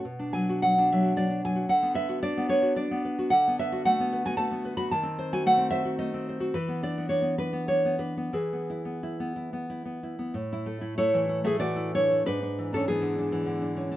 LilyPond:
\new Staff \with { instrumentName = "Nylon-string guitar" } { \time 3/4 \key b \dorian \tempo 4 = 106 << { a''8 gis''8 fis''8 e''8 d''8 gis''8 | fis''8 e''8 d''8 cis''8 d''8 r8 | \key e \mixolydian fis''8 e''8 fis''8. gis''16 a''8. b''16 | a''8. gis''16 fis''8 e''8 dis''4 |
b'8 d''8 cis''8 b'8 cis''8 b'8 | gis'2~ gis'8 r8 | r4 <e' cis''>8. <gis' e''>16 <fis' d''>8 <e' cis''>8 | <d' b'>8. <cis' a'>16 <b gis'>4. r8 | } \\ { b,16 d'16 fis16 fis'16 fis16 d'16 fis16 fis'16 fis16 d'16 fis16 fis'16 | d16 b16 b'16 fis'16 d'16 b16 b'16 fis'16 d'16 b16 b'16 fis'16 | d16 b16 b'16 fis'16 a16 b16 b'16 fis'16 a16 b16 b'16 fis'16 | dis16 bis16 bis'16 fis'16 a16 bis16 bis'16 fis'16 a16 bis16 bis'16 fis'16 |
e16 b16 d'16 b16 d'16 b16 d'16 b16 d'16 b16 d'16 b16 | e16 b16 e'16 b16 e'16 b16 e'16 b16 e'16 b16 e'16 b16 | a,16 e'16 a16 e'16 a16 e16 e'16 a16 e16 e'16 d'16 e'16 | gis,16 d'16 e16 d'16 e16 d16 d'16 e16 d16 d'16 cis'16 d'16 | } >> }